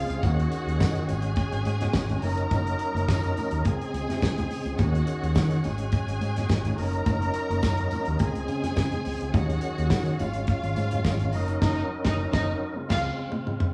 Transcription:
Already playing: tonewheel organ C#3 G#3 C4 G#4, string section F4 F5
0.09 fingered electric bass C#2, closed hi-hat
0.22 fingered electric bass D#2, tonewheel organ D#3 C#4 F#4, string section F#4 F#5, kick, closed hi-hat, tambourine, low conga
0.40 closed hi-hat
0.52 closed hi-hat, tambourine, muted conga
0.66 fingered electric bass D#2, closed hi-hat
0.80 fingered electric bass D#3, kick, snare, tambourine, high conga
0.95 closed hi-hat, high conga
1.08 fingered electric bass G#1, tonewheel organ G#3, string section G#4 G#5, closed hi-hat, tambourine, muted conga, low conga
1.22 closed hi-hat
1.36 kick, closed hi-hat, tambourine, muted conga
1.52 fingered electric bass G#1, closed hi-hat
1.65 fingered electric bass G#2, closed hi-hat, tambourine
1.81 snare, closed hi-hat, high conga
1.93 fingered electric bass G#1, kick, snare, tambourine, muted conga
2.09 closed hi-hat, high conga, low conga
2.21 fingered electric bass F#1, tonewheel organ F#3 D#4 A#4, string section A#4 A#5, open hi-hat, tambourine, muted conga
2.37 closed hi-hat
2.51 fingered electric bass F#1, kick, closed hi-hat, tambourine, low conga
2.67 closed hi-hat
2.79 closed hi-hat, muted conga
2.95 fingered electric bass F#1, closed hi-hat
3.09 fingered electric bass F#2, kick, snare, tambourine, muted conga, high conga
3.23 closed hi-hat, high conga
3.37 closed hi-hat, tambourine, muted conga, low conga
3.51 fingered electric bass D#2, closed hi-hat
3.64 fingered electric bass C#2, tonewheel organ C#3 G#3 C4 G#4, string section G#4 G#5, kick, closed hi-hat
3.82 closed hi-hat
3.94 fingered electric bass C#2, closed hi-hat, tambourine
4.09 fingered electric bass C3, snare, closed hi-hat, high conga
4.22 fingered electric bass C#3, kick, snare, tambourine
4.37 fingered electric bass C#2, closed hi-hat, high conga, low conga
4.51 open hi-hat, tambourine, muted conga
4.65 fingered electric bass C#2, closed hi-hat
4.78 fingered electric bass D#2, tonewheel organ D#3 C#4 F#4, string section F#4 F#5, kick, closed hi-hat, tambourine, muted conga, low conga
4.95 closed hi-hat
5.07 closed hi-hat, tambourine, muted conga
5.23 fingered electric bass D#2, closed hi-hat
5.35 fingered electric bass D#3, kick, snare, tambourine, muted conga, high conga
5.51 closed hi-hat, high conga
5.63 fingered electric bass G#1, tonewheel organ G#3, string section G#4 G#5, closed hi-hat, tambourine, muted conga, low conga
5.78 closed hi-hat
5.92 kick, closed hi-hat, tambourine, muted conga
6.08 fingered electric bass G#1, closed hi-hat
6.21 fingered electric bass G#2, closed hi-hat, tambourine, muted conga
6.36 snare, closed hi-hat, high conga
6.49 fingered electric bass G#1, kick, snare, tambourine
6.65 closed hi-hat, high conga, low conga
6.77 fingered electric bass F#1, tonewheel organ F#3 D#4 A#4, string section A#4 A#5, open hi-hat, tambourine
6.93 closed hi-hat
7.06 fingered electric bass F#1, kick, closed hi-hat, tambourine, low conga
7.22 closed hi-hat
7.34 closed hi-hat, tambourine, muted conga
7.50 fingered electric bass F#1, closed hi-hat
7.62 fingered electric bass F#2, kick, snare, tambourine, muted conga, high conga
7.77 closed hi-hat, high conga
7.91 closed hi-hat, tambourine, low conga
8.05 fingered electric bass D#2, closed hi-hat
8.19 fingered electric bass C#2, tonewheel organ C#3 G#3 C4 G#4, string section G#4 G#5, kick, closed hi-hat, tambourine, muted conga
8.35 fingered electric bass C#2, closed hi-hat
8.48 fingered electric bass C#3, closed hi-hat, tambourine
8.63 snare, closed hi-hat, high conga
8.76 fingered electric bass C#3, kick, snare, tambourine
8.92 closed hi-hat, high conga, low conga
9.05 fingered electric bass C#2, open hi-hat, tambourine, muted conga
9.21 fingered electric bass C#2, closed hi-hat
9.34 fingered electric bass D#2, tonewheel organ D#3 F#3 C#4, string section F#4 F#5, kick, closed hi-hat, tambourine, muted conga, low conga
9.50 closed hi-hat
9.61 closed hi-hat, tambourine, muted conga
9.78 fingered electric bass D#2, closed hi-hat
9.90 fingered electric bass D#3, kick, snare, tambourine, muted conga, high conga
10.06 closed hi-hat, high conga
10.19 fingered electric bass G#1, tonewheel organ G#3, string section F4 F5, closed hi-hat, tambourine, muted conga, low conga
10.34 closed hi-hat
10.47 kick, closed hi-hat, tambourine
10.63 fingered electric bass G#1, closed hi-hat
10.76 fingered electric bass G#2, closed hi-hat, tambourine, muted conga
10.91 closed hi-hat, high conga
11.05 fingered electric bass G#1, kick, snare, tambourine
11.20 closed hi-hat, high conga, low conga
11.33 fingered electric bass F#1, tonewheel organ F#3 C#4 D#4 A#4, string section D#4 D#5, open hi-hat, tambourine, muted conga
11.48 closed hi-hat
11.61 fingered electric bass F#1, string section D#4 D#5, kick, snare, crash
12.04 fingered electric bass F#1, string section D#4 D#5, kick, snare
12.32 fingered electric bass F#1, string section D#4 D#5, kick, snare
12.76 tonewheel organ C#3 G#3 C4 F4
12.89 fingered electric bass C#2, string section F4 F5, kick, snare, crash
13.32 high tom
13.47 mid tom
13.60 mid tom

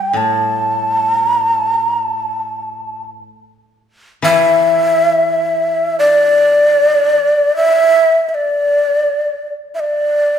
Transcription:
Already playing: koto G3, shakuhachi G5
0.13 koto A2, shakuhachi A5
1.19 shakuhachi A#5
1.46 shakuhachi A5
1.76 shakuhachi A#5
2.04 shakuhachi A5
4.22 koto E3, shakuhachi E5
5.99 shakuhachi D5
7.56 shakuhachi E5
8.29 shakuhachi E5
8.34 shakuhachi D5
9.75 shakuhachi E5
9.80 shakuhachi D5

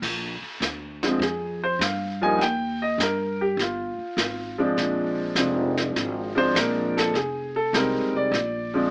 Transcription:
0.02 upright bass A#1, brush sweep, kick, snare, crash
0.42 muted upright bass stroke
0.60 upright bass D2, snare, hi-hat pedal
1.03 grand piano D3 F3 G#3 C4, snare
1.19 upright bass F2, grand piano G#4, brush sweep, snare
1.64 grand piano C5
1.79 upright bass G2, grand piano F5, snare, hi-hat pedal
2.21 grand piano F3 G3 A#3 D#4 G#5
2.38 upright bass D#2, grand piano F#5, brush sweep, snare
2.42 grand piano G5
2.82 grand piano D#5
2.98 upright bass G2, snare, hi-hat pedal
3.03 grand piano A#4
3.41 grand piano G4
3.57 upright bass G1, brush sweep, snare
3.61 grand piano F4
3.98 muted upright bass stroke
4.17 upright bass G#1, snare, hi-hat pedal
4.58 grand piano F3 G#3 C4 D4
4.77 upright bass A#1, brush sweep, snare
5.35 upright bass F1, grand piano F3 G#3 C4 D4, snare, hi-hat pedal
5.77 snare
5.96 upright bass G#1, brush sweep, snare
6.35 grand piano F3 G#3 C4 D4 C5
6.55 upright bass A#1, grand piano A#4, snare, hi-hat pedal
6.97 grand piano A4, snare
7.14 upright bass F1, grand piano G#4, brush sweep, snare
7.56 grand piano A4
7.73 upright bass C2, grand piano G3 G#3 C4 D#4 A#4, snare, hi-hat pedal
7.93 upright bass G#1
8.13 upright bass F1, grand piano D5
8.31 upright bass A#1, brush sweep, snare
8.74 grand piano F3 G#3 C4 D4

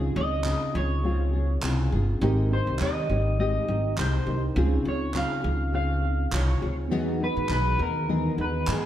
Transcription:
Already playing: upright bass C#2, nylon-string guitar C#3 C4 F4 G#4, tine electric piano C#4 D#4 F4 G#4
0.15 upright bass C#2, nylon-string guitar C4 F4 G#4, clean electric guitar D#5
0.44 nylon-string guitar C#3 C4 F4 G#4, clap
0.74 upright bass C#2, nylon-string guitar C4 F4 G#4, clean electric guitar C#5
1.03 nylon-string guitar C#3 C4 F4 G#4
1.33 nylon-string guitar C4 F4 G#4
1.62 upright bass C2, nylon-string guitar C#3 C4 F4 G#4, clap
1.92 upright bass G1, nylon-string guitar C4 F4 G#4
2.19 upright bass G#1, nylon-string guitar G#3 C4, tine electric piano C4 D#4 G4
2.23 nylon-string guitar D#4 G4, tine electric piano A#4
2.51 nylon-string guitar C4 D#4 G4, clean electric guitar C5
2.67 upright bass C2
2.79 upright bass D#2, nylon-string guitar G#3 C4 D#4 G4, clean electric guitar D#5, clap
3.09 upright bass G#1, nylon-string guitar C4 D#4 G4
3.39 nylon-string guitar G#3 C4 D#4 G4, clean electric guitar D#5
3.68 upright bass G#1, nylon-string guitar C4 D#4 G4
3.97 upright bass C2, nylon-string guitar G#3 C4 D#4 G4, clean electric guitar C5, clap
4.26 upright bass C2, tine electric piano C4 D#4 G4 A#4, nylon-string guitar C4 D#4 G4
4.54 upright bass C#2, nylon-string guitar C#3 C4 F4 G#4, tine electric piano C#4 D#4 F4
4.59 tine electric piano G#4
4.85 upright bass C#2, nylon-string guitar C4 F4 G#4, clean electric guitar C#5
5.14 nylon-string guitar C#3 C4 F4 G#4, clean electric guitar F5, clap
5.43 upright bass C#2, nylon-string guitar C4 F4 G#4
5.73 nylon-string guitar C#3 C4 F4 G#4, clean electric guitar F5
6.02 nylon-string guitar C4 F4 G#4
6.31 upright bass C2, nylon-string guitar C#3 C4 F4 G#4, clean electric guitar C#5, clap
6.61 upright bass C#2, nylon-string guitar C4 F4 G#4
6.88 upright bass E2, nylon-string guitar E3 B3 D#4, tine electric piano B3 D#4 F#4
6.92 nylon-string guitar G#4, tine electric piano G#4
7.20 nylon-string guitar B3 D#4 G#4, clean electric guitar B4
7.37 upright bass G#2
7.49 upright bass B1, nylon-string guitar E3 B3 D#4 G#4, clean electric guitar B4, clap
7.79 upright bass D#2, nylon-string guitar B3 D#4 G#4, clean electric guitar A#4
8.08 nylon-string guitar E3 B3 D#4 G#4
8.37 upright bass D#2, nylon-string guitar B3 D#4 G#4, clean electric guitar B4
8.67 upright bass G#2, nylon-string guitar E3 B3 D#4 G#4, clap
8.71 clean electric guitar G#4

